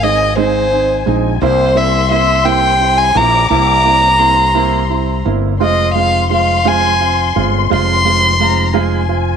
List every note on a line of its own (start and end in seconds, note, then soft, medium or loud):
0.00 1.03 G#1 medium
0.00 0.28 G#3 medium
0.00 0.29 C4 medium
0.00 0.29 D#4 medium
0.00 0.38 D#5 medium
0.00 1.37 G#5 medium
0.37 0.63 G#3 medium
0.37 0.63 C4 medium
0.37 0.63 D#4 loud
0.37 1.12 C5 medium
0.72 0.98 C4 medium
0.72 0.98 D#4 medium
1.06 1.39 A#1 medium
1.06 1.32 G#3 medium
1.06 1.32 C4 medium
1.06 1.32 D#4 medium
1.41 3.11 C2 loud
1.41 1.67 A#3 medium
1.41 1.68 C4 medium
1.41 1.68 E4 loud
1.41 1.78 C5 loud
1.41 3.15 C6 loud
1.74 2.01 A#3 medium
1.74 2.02 C4 medium
1.74 2.01 E4 medium
1.74 2.11 E5 medium
2.11 2.36 A#3 medium
2.11 2.36 C4 medium
2.11 2.37 E4 medium
2.11 2.46 E5 medium
2.45 2.71 A#3 medium
2.45 2.71 C4 medium
2.45 2.71 E4 loud
2.45 2.99 G5 loud
2.80 3.06 C4 medium
2.80 3.06 E4 medium
2.97 3.18 G#5 loud
3.15 3.48 A#1 medium
3.15 3.41 A#3 medium
3.15 3.41 C4 medium
3.15 3.41 E4 medium
3.15 3.51 A#5 loud
3.15 4.19 D6 loud
3.50 5.21 C2 loud
3.50 3.76 A#3 medium
3.50 3.76 C4 medium
3.50 3.76 E4 loud
3.50 5.22 A#5 loud
3.85 4.10 A#3 medium
3.85 4.11 C4 medium
3.85 4.11 E4 medium
4.19 4.45 A#3 medium
4.19 4.45 C4 medium
4.19 4.46 E4 medium
4.19 5.25 C6 medium
4.55 4.81 A#3 medium
4.55 4.81 C4 medium
4.55 4.81 E4 medium
4.90 5.16 C4 medium
4.90 5.16 E4 medium
5.25 5.60 G1 medium
5.25 5.51 A#3 medium
5.25 5.51 C4 medium
5.25 5.51 E4 medium
5.59 7.32 F1 medium
5.59 5.86 G#3 medium
5.59 5.86 C4 medium
5.59 5.87 F4 medium
5.59 5.94 D#5 medium
5.59 8.36 C6 loud
5.95 6.21 G#3 medium
5.95 6.22 C4 medium
5.95 6.22 F4 medium
5.95 6.28 F5 medium
6.30 6.56 G#3 medium
6.30 6.57 C4 medium
6.30 6.57 F4 medium
6.30 6.69 F5 medium
6.65 6.91 G#3 medium
6.65 6.91 C4 medium
6.65 6.91 F4 medium
6.65 7.37 G#5 loud
7.00 7.26 C4 medium
7.00 7.27 F4 medium
7.36 7.69 G1 medium
7.36 7.62 G#3 medium
7.36 7.62 C4 medium
7.36 7.62 F4 medium
7.70 9.37 F1 loud
7.70 7.96 G#3 medium
7.70 7.96 C4 medium
7.70 7.97 F4 loud
7.70 9.07 C6 loud
8.05 8.31 G#3 medium
8.05 8.31 C4 medium
8.05 8.31 F4 medium
8.40 8.66 G#3 medium
8.40 8.66 C4 medium
8.40 8.66 F4 medium
8.40 8.73 A#5 medium
8.74 9.00 G#3 loud
8.74 9.00 C4 medium
8.74 9.00 F4 loud
8.74 9.37 G#5 medium
9.09 9.35 C4 medium
9.09 9.35 F4 medium